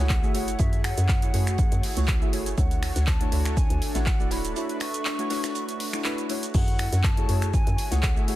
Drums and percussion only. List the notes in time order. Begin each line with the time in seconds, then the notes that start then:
0.09 kick, snare, clap, closed hi-hat, shaker
0.23 shaker
0.34 closed hi-hat, open hi-hat
0.48 closed hi-hat, shaker
0.59 kick, closed hi-hat, shaker
0.73 closed hi-hat, shaker
0.84 finger snap, closed hi-hat, open hi-hat
0.98 closed hi-hat, shaker
1.09 kick, snare, clap, closed hi-hat, shaker
1.22 closed hi-hat, shaker
1.34 closed hi-hat, open hi-hat
1.47 finger snap, closed hi-hat, shaker
1.58 kick, closed hi-hat, shaker
1.72 closed hi-hat, shaker
1.83 open hi-hat
1.97 closed hi-hat, shaker
2.08 kick, snare, clap, closed hi-hat, shaker
2.22 shaker
2.33 closed hi-hat, open hi-hat
2.46 closed hi-hat, shaker
2.58 kick, closed hi-hat, shaker
2.71 closed hi-hat, shaker
2.83 finger snap, closed hi-hat, open hi-hat
2.96 snare, closed hi-hat, shaker
3.07 kick, snare, clap, closed hi-hat, shaker
3.21 closed hi-hat, shaker
3.32 closed hi-hat, open hi-hat
3.45 finger snap, closed hi-hat, shaker
3.57 kick, closed hi-hat, shaker
3.70 closed hi-hat, shaker
3.82 closed hi-hat, open hi-hat
3.95 snare, closed hi-hat, shaker
4.06 kick, snare, clap, closed hi-hat, shaker
4.20 shaker
4.31 snare, closed hi-hat, open hi-hat
4.45 closed hi-hat, shaker
4.56 closed hi-hat, shaker
4.69 closed hi-hat, shaker
4.80 finger snap, closed hi-hat, open hi-hat
4.94 closed hi-hat, shaker
5.05 snare, clap, closed hi-hat, shaker
5.19 closed hi-hat, shaker
5.30 snare, closed hi-hat, open hi-hat
5.44 finger snap, snare, closed hi-hat, shaker
5.55 closed hi-hat, shaker
5.69 closed hi-hat, shaker
5.80 open hi-hat
5.93 finger snap, closed hi-hat, shaker
6.04 snare, clap, closed hi-hat, shaker
6.18 closed hi-hat, shaker
6.29 closed hi-hat, open hi-hat
6.43 closed hi-hat, shaker
6.54 kick, closed hi-hat, crash, shaker
6.68 closed hi-hat, shaker
6.79 finger snap, closed hi-hat, open hi-hat
6.93 snare, closed hi-hat, shaker
7.04 kick, snare, clap, closed hi-hat, shaker
7.17 closed hi-hat, shaker
7.29 closed hi-hat, open hi-hat
7.42 finger snap, closed hi-hat, shaker
7.53 kick, closed hi-hat, shaker
7.67 closed hi-hat, shaker
7.78 closed hi-hat, open hi-hat
7.91 snare, closed hi-hat, shaker
8.03 kick, snare, clap, closed hi-hat, shaker
8.17 shaker
8.28 closed hi-hat, open hi-hat